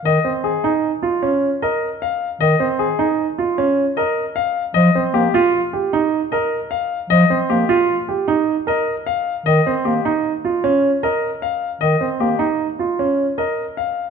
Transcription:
X:1
M:6/4
L:1/8
Q:1/4=153
K:Fm
V:1 name="Grand piano"
e z A z4 z e z f z | e z A z4 z e z f z | e z G z4 z e z f z | e z G z4 z e z f z |
e z G z4 z e z f z | e z G z4 z e z f z |]
V:2 name="Grand piano"
z C z E z F D z B z3 | z C z E z F D z B z3 | z C z F z G E z B z3 | z C z F z G E z B z3 |
z C z E z F D z B z3 | z C z E z F D z B z3 |]
V:3 name="Bass clarinet" clef=bass
E, z8 z3 | E, z8 z3 | F, z B, z8 z | F, z B, z8 z |
E, z B, z8 z | E, z B, z8 z |]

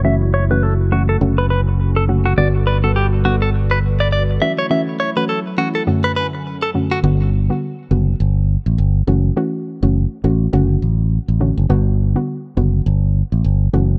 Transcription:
X:1
M:4/4
L:1/16
Q:"Swing 16ths" 1/4=103
K:Glyd
V:1 name="Clean electric guitar"
e z c B A z F A z B B z2 A z F | d z B A G z F A z B z d d z e c | e z c B A z F A z B B z2 A z F | z16 |
z16 | z16 |]
V:2 name="Analog synth pad"
[A,EF]8 [D,CF]8 | [G,AB]12- [G,AB]2 [F,A,E]2- | [F,A,E]8 [F,,D,C]8 | z16 |
z16 | z16 |]
V:3 name="Synth pluck"
[E,A,CF]3 [E,A,CF] z2 [E,A,CF] z [D,A,CF]6 [D,A,CF] z | [D,G,B,F]3 [D,G,B,F] z2 [D,G,B,F] z6 z [E,A,CF] z | [E,A,CF]3 [E,A,CF] z2 [E,A,CF] z [F,,D,A,CF]6 [F,,D,A,CF] z | [D,G,B,F]3 [D,G,B,F] z2 [D,G,B,F] z6 z [E,A,CF] z |
[E,A,CF]3 [E,A,CF] z2 [E,A,CF] z [D,A,CF]6 [D,A,CF] z | [D,G,B,F]3 [D,G,B,F] z2 [D,G,B,F] z6 z [E,A,CF] z |]
V:4 name="Fingered electric bass" clef=bass
F,,,8 F,,,8 | G,,,12- G,,,2 z2 | z16 | G,,,4 z2 F,,,2 G,,,3 A,,, G,,,2 F,,,2 |
z3 F,,,2 z A,,,2 F,,,2 A,,,3 A,,,2 F,,, | G,,,4 z2 F,,,2 G,,,3 A,,, G,,,2 F,,,2 |]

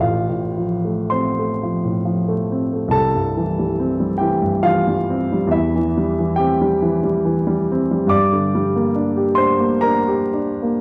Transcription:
X:1
M:3/4
L:1/16
Q:1/4=68
K:Cmix
V:1 name="Grand piano"
[Ff]4 [cc']6 z2 | [Aa]6 [Gg]2 [Ff]4 | [Ee]4 [Gg]6 z2 | [K:Gm] [dd']6 [cc']2 [Bb]4 |]
V:2 name="Grand piano" clef=bass
A,,, A,, F, A, C A, F, A,, F, A, C A, | C,, G,, E, G, C G, E, G,, E, G, C G, | E,, E, G, E, C G, E, G, E, G, C G, | [K:Gm] G,, D, G, B, D G D B, D G D B, |]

